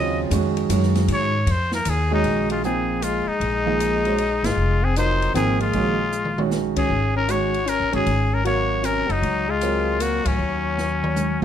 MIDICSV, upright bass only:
0, 0, Header, 1, 3, 480
1, 0, Start_track
1, 0, Key_signature, -5, "minor"
1, 0, Tempo, 387347
1, 1346, Time_signature, 3, 2, 24, 8
1, 14188, End_track
2, 0, Start_track
2, 0, Title_t, "Upright bass"
2, 0, Program_c, 0, 32
2, 0, Note_on_c, 0, 39, 89
2, 366, Note_off_c, 0, 39, 0
2, 377, Note_on_c, 0, 41, 99
2, 847, Note_off_c, 0, 41, 0
2, 859, Note_on_c, 0, 42, 94
2, 1328, Note_off_c, 0, 42, 0
2, 1339, Note_on_c, 0, 44, 88
2, 1804, Note_off_c, 0, 44, 0
2, 1812, Note_on_c, 0, 41, 95
2, 2283, Note_off_c, 0, 41, 0
2, 2301, Note_on_c, 0, 39, 96
2, 2768, Note_off_c, 0, 39, 0
2, 2776, Note_on_c, 0, 34, 81
2, 4006, Note_off_c, 0, 34, 0
2, 4215, Note_on_c, 0, 34, 77
2, 5446, Note_off_c, 0, 34, 0
2, 5492, Note_on_c, 0, 32, 63
2, 5650, Note_off_c, 0, 32, 0
2, 5660, Note_on_c, 0, 29, 74
2, 6574, Note_off_c, 0, 29, 0
2, 6619, Note_on_c, 0, 32, 72
2, 7070, Note_off_c, 0, 32, 0
2, 7101, Note_on_c, 0, 34, 76
2, 8496, Note_off_c, 0, 34, 0
2, 8550, Note_on_c, 0, 32, 76
2, 9621, Note_off_c, 0, 32, 0
2, 9664, Note_on_c, 0, 34, 61
2, 9816, Note_off_c, 0, 34, 0
2, 9834, Note_on_c, 0, 31, 67
2, 9981, Note_off_c, 0, 31, 0
2, 9994, Note_on_c, 0, 32, 81
2, 11218, Note_off_c, 0, 32, 0
2, 11268, Note_on_c, 0, 30, 65
2, 11421, Note_off_c, 0, 30, 0
2, 11430, Note_on_c, 0, 37, 80
2, 12656, Note_off_c, 0, 37, 0
2, 12705, Note_on_c, 0, 33, 63
2, 12860, Note_off_c, 0, 33, 0
2, 12872, Note_on_c, 0, 39, 83
2, 14097, Note_off_c, 0, 39, 0
2, 14150, Note_on_c, 0, 34, 64
2, 14188, Note_off_c, 0, 34, 0
2, 14188, End_track
3, 0, Start_track
3, 0, Title_t, "Muted upright bass strokes"
3, 4049, Note_on_c, 9, 29, 36
3, 4173, Note_off_c, 9, 29, 0
3, 14188, End_track
0, 0, End_of_file